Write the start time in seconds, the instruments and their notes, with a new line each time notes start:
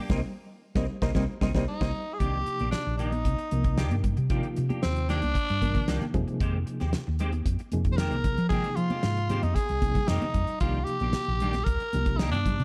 Already playing: clean electric guitar G4
0.00 clean electric guitar D4
0.10 fingered electric bass C2, reed electric piano G3 A#3 C4 A#4 C5 D#5, clean electric guitar A#3 C4 D#4, kick, snare, low conga
0.75 fingered electric bass C2, reed electric piano G3 A#3 C4 A#4 C5 D#5, clean electric guitar A#3 C4 D#4, kick, snare, low conga
1.02 fingered electric bass C2, reed electric piano G3 A#3 C4 A#4 C5 D#5, clean electric guitar A#3 C4 D#4, kick, snare, low conga
1.15 fingered electric bass C2, reed electric piano G3 A#3 C4 A#4 C5 D#5, clean electric guitar A#3 C4 D#4, kick, snare, low conga
1.41 fingered electric bass C2, reed electric piano G3 A#3 C4 A#4 C5 D#5, clean electric guitar A#3 C4 D#4, kick, snare, low conga
1.55 fingered electric bass C2, reed electric piano G3 A#3 C4 A#4 C5 D#5, clean electric guitar A#3 C4 D#4, kick, snare, low conga
1.68 tenor saxophone D#4
1.81 fingered electric bass C2, reed electric piano G3 A#3 C4 A#4 C5 D#5, clean electric guitar A#3 C4 D#4, kick, snare, low conga
2.14 tenor saxophone G#4
2.19 fingered electric bass C2, reed electric piano C3 F3 A#3 D#4 G4, clean electric guitar D#3 A#3 D4 G4, tenor saxophone G4, kick, closed hi-hat
2.46 muted clean electric guitar stroke, muted fingered electric bass stroke, closed hi-hat
2.59 fingered electric bass A#1, clean electric guitar A#3 D4 G4, closed hi-hat, high conga
2.71 tenor saxophone D4, muted clean electric guitar stroke, snare, closed hi-hat
2.87 fingered electric bass A#1, muted clean electric guitar stroke
2.97 clean electric guitar D#3 A#3 D4 G4, tenor saxophone D#4, closed hi-hat
3.12 muted clean electric guitar stroke, closed hi-hat, high conga
3.25 fingered electric bass C2, kick, closed hi-hat
3.38 muted clean electric guitar stroke, closed hi-hat
3.51 fingered electric bass C2, reed electric piano C3 F3 A#3 D#4 A#4, closed hi-hat, high conga
3.64 muted clean electric guitar stroke, kick, closed hi-hat
3.77 clean electric guitar D#3 A#3 D4 G4, snare, closed hi-hat
3.91 fingered electric bass G2, closed hi-hat, high conga
4.03 muted clean electric guitar stroke, kick, closed hi-hat, low conga
4.17 fingered electric bass C3, muted clean electric guitar stroke, closed hi-hat
4.30 reed electric piano C3 F3 A#3 D#4 F4, clean electric guitar D#3 A#3 D4 G4, kick, closed hi-hat
4.43 closed hi-hat
4.56 fingered electric bass C3, muted clean electric guitar stroke, closed hi-hat
4.69 clean electric guitar A#3 D4 G4, closed hi-hat, high conga
4.82 fingered electric bass D#2, tenor saxophone C4, muted clean electric guitar stroke, snare, closed hi-hat
4.96 muted clean electric guitar stroke, closed hi-hat
5.09 clean electric guitar D#3 A#3 D4 G4, tenor saxophone D4, snare, closed hi-hat, low conga
5.22 fingered electric bass C2, muted clean electric guitar stroke, closed hi-hat, high conga
5.35 kick, closed hi-hat
5.49 fingered electric bass G2, muted clean electric guitar stroke, closed hi-hat
5.62 reed electric piano C3 D#3 F3 A#3 A#4, kick, closed hi-hat, high conga
5.75 muted clean electric guitar stroke, kick, closed hi-hat
5.88 fingered electric bass C2, clean electric guitar D#3 A#3 D4 G4, snare, closed hi-hat
6.01 muted fingered electric bass stroke, closed hi-hat, high conga
6.14 fingered electric bass F2, reed electric piano C3 F3 A#3 D#4 G#4, muted clean electric guitar stroke, kick, closed hi-hat, low conga
6.27 muted clean electric guitar stroke, muted fingered electric bass stroke, closed hi-hat
6.40 fingered electric bass F2, clean electric guitar D#3 G#3 C4 G4, kick, closed hi-hat
6.66 muted clean electric guitar stroke, closed hi-hat
6.80 fingered electric bass D#2, clean electric guitar G#3 C4 G4, snare, closed hi-hat, high conga
6.93 muted clean electric guitar stroke, snare, closed hi-hat
7.07 fingered electric bass D#2, muted clean electric guitar stroke
7.19 clean electric guitar D#3 G#3 C4 G4, closed hi-hat, low conga
7.32 muted clean electric guitar stroke, closed hi-hat, high conga
7.46 fingered electric bass F2, kick, closed hi-hat
7.59 muted clean electric guitar stroke, closed hi-hat
7.72 fingered electric bass F2, reed electric piano C3 F3 A#3 D#4 G#4, closed hi-hat, high conga
7.85 muted clean electric guitar stroke, kick, closed hi-hat
7.92 tenor saxophone C5
7.97 clean electric guitar D#3 G#3 C4 G4, tenor saxophone A#4, snare, closed hi-hat
8.11 fingered electric bass C2, closed hi-hat, high conga
8.24 muted clean electric guitar stroke, kick, closed hi-hat, low conga
8.38 fingered electric bass F3, muted clean electric guitar stroke, closed hi-hat
8.49 reed electric piano C3 F3 A#3 D#4 G#4, clean electric guitar D#3 G#3 C4 G4, tenor saxophone G#4, kick, closed hi-hat
8.64 closed hi-hat
8.76 fingered electric bass F3, tenor saxophone F4, muted clean electric guitar stroke, closed hi-hat
8.90 clean electric guitar G#3 C4 G4, closed hi-hat, high conga
9.03 fingered electric bass G#2, muted clean electric guitar stroke, snare, closed hi-hat
9.17 muted clean electric guitar stroke, closed hi-hat
9.29 clean electric guitar D#3 G#3 C4 G4, closed hi-hat, high conga, low conga
9.43 fingered electric bass F2, tenor saxophone D#4, muted clean electric guitar stroke, closed hi-hat, high conga
9.55 tenor saxophone G#4, kick, closed hi-hat
9.69 fingered electric bass C2, muted clean electric guitar stroke, closed hi-hat
9.82 reed electric piano C3 F3 A#3 D#4 G#4, kick, closed hi-hat, high conga
9.95 muted clean electric guitar stroke, kick, closed hi-hat, low conga
10.08 fingered electric bass F2, clean electric guitar D#3 G#3 C4 G4, tenor saxophone D#4, snare, closed hi-hat
10.21 muted fingered electric bass stroke, closed hi-hat, high conga
10.34 fingered electric bass F2, muted clean electric guitar stroke, kick, closed hi-hat, low conga
10.47 muted clean electric guitar stroke, muted fingered electric bass stroke, closed hi-hat
10.60 fingered electric bass C2, reed electric piano C3 F3 A#3 D#4 G4, clean electric guitar D#3 A#3 D4 G4, tenor saxophone F4, kick, closed hi-hat
10.85 tenor saxophone G4, closed hi-hat
10.89 muted clean electric guitar stroke
11.00 fingered electric bass A#1, clean electric guitar A#3 D4 G4, closed hi-hat, high conga
11.13 muted clean electric guitar stroke, snare, closed hi-hat
11.28 fingered electric bass A#1, muted clean electric guitar stroke
11.40 clean electric guitar D#3 A#3 D4 G4, closed hi-hat, low conga
11.53 muted clean electric guitar stroke, snare, closed hi-hat, high conga
11.64 fingered electric bass C2, tenor saxophone A#4, kick, closed hi-hat
11.80 muted fingered electric bass stroke, muted clean electric guitar stroke, closed hi-hat
11.93 fingered electric bass C2, reed electric piano C3 F3 A#3 D#4 G4, closed hi-hat, high conga
12.06 muted clean electric guitar stroke, kick, closed hi-hat
12.18 clean electric guitar D#3 A#3 D4 G4, tenor saxophone D#4, snare, closed hi-hat
12.32 fingered electric bass G2, tenor saxophone D4, closed hi-hat, high conga
12.46 muted clean electric guitar stroke, kick, closed hi-hat, low conga
12.59 fingered electric bass C3, muted clean electric guitar stroke, closed hi-hat